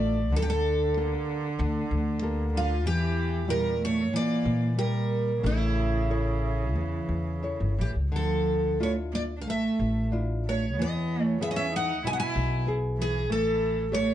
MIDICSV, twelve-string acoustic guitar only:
0, 0, Header, 1, 2, 480
1, 0, Start_track
1, 0, Tempo, 636267
1, 251, Time_signature, 4, 2, 24, 8
1, 3611, Tempo, 666667
1, 7931, Tempo, 625000
1, 10507, End_track
2, 0, Start_track
2, 0, Title_t, "Twelve-string acoustic guitar"
2, 0, Program_c, 0, 25
2, 0, Note_on_c, 0, 74, 98
2, 270, Note_off_c, 0, 74, 0
2, 275, Note_on_c, 0, 69, 93
2, 315, Note_off_c, 0, 69, 0
2, 320, Note_on_c, 0, 67, 78
2, 361, Note_off_c, 0, 67, 0
2, 376, Note_on_c, 0, 69, 89
2, 1941, Note_on_c, 0, 65, 88
2, 1981, Note_off_c, 0, 69, 0
2, 2161, Note_off_c, 0, 65, 0
2, 2164, Note_on_c, 0, 67, 89
2, 2642, Note_on_c, 0, 70, 98
2, 2654, Note_off_c, 0, 67, 0
2, 2889, Note_off_c, 0, 70, 0
2, 2903, Note_on_c, 0, 73, 100
2, 3134, Note_off_c, 0, 73, 0
2, 3137, Note_on_c, 0, 74, 105
2, 3607, Note_off_c, 0, 74, 0
2, 3610, Note_on_c, 0, 70, 86
2, 4098, Note_off_c, 0, 70, 0
2, 4098, Note_on_c, 0, 64, 83
2, 5786, Note_off_c, 0, 64, 0
2, 5789, Note_on_c, 0, 67, 72
2, 5852, Note_off_c, 0, 67, 0
2, 6039, Note_on_c, 0, 69, 77
2, 6483, Note_off_c, 0, 69, 0
2, 6523, Note_on_c, 0, 73, 76
2, 6585, Note_off_c, 0, 73, 0
2, 6752, Note_on_c, 0, 74, 85
2, 6802, Note_off_c, 0, 74, 0
2, 6944, Note_on_c, 0, 77, 61
2, 6988, Note_off_c, 0, 77, 0
2, 7004, Note_on_c, 0, 76, 79
2, 7442, Note_off_c, 0, 76, 0
2, 7717, Note_on_c, 0, 73, 75
2, 7948, Note_off_c, 0, 73, 0
2, 7954, Note_on_c, 0, 75, 85
2, 8292, Note_off_c, 0, 75, 0
2, 8292, Note_on_c, 0, 73, 85
2, 8399, Note_off_c, 0, 73, 0
2, 8421, Note_on_c, 0, 76, 86
2, 8472, Note_off_c, 0, 76, 0
2, 8486, Note_on_c, 0, 75, 74
2, 8524, Note_off_c, 0, 75, 0
2, 8528, Note_on_c, 0, 76, 90
2, 8666, Note_off_c, 0, 76, 0
2, 8679, Note_on_c, 0, 78, 100
2, 8913, Note_off_c, 0, 78, 0
2, 8916, Note_on_c, 0, 80, 101
2, 8956, Note_off_c, 0, 80, 0
2, 8963, Note_on_c, 0, 78, 80
2, 9008, Note_off_c, 0, 78, 0
2, 9014, Note_on_c, 0, 80, 100
2, 9360, Note_off_c, 0, 80, 0
2, 9643, Note_on_c, 0, 68, 85
2, 9874, Note_off_c, 0, 68, 0
2, 9878, Note_on_c, 0, 69, 85
2, 10356, Note_on_c, 0, 73, 100
2, 10357, Note_off_c, 0, 69, 0
2, 10507, Note_off_c, 0, 73, 0
2, 10507, End_track
0, 0, End_of_file